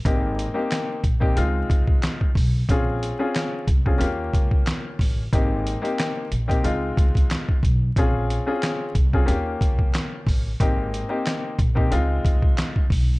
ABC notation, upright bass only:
X:1
M:4/4
L:1/16
Q:"Swing 16ths" 1/4=91
K:Ab
V:1 name="Upright bass" clef=bass
A,,,3 z3 B,,,2 D,,2 D,,2 z2 =B,,,2 | B,,,3 z3 C,,2 E,,2 D,,2 z2 =A,,,2 | A,,,3 z3 B,,,2 D,,2 D,,2 z2 =B,,,2 | B,,,3 z3 C,,2 E,,2 D,,2 z2 =A,,,2 |
A,,,3 z3 B,,,2 D,,2 D,,2 z2 =B,,,2 |]